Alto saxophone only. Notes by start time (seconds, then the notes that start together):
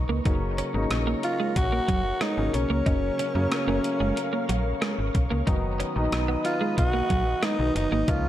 1.24 F4
1.57 F#4
2.22 D#4
2.55 C#4
6.46 F4
6.78 F#4
7.44 D#4
7.76 D#4
8.09 F4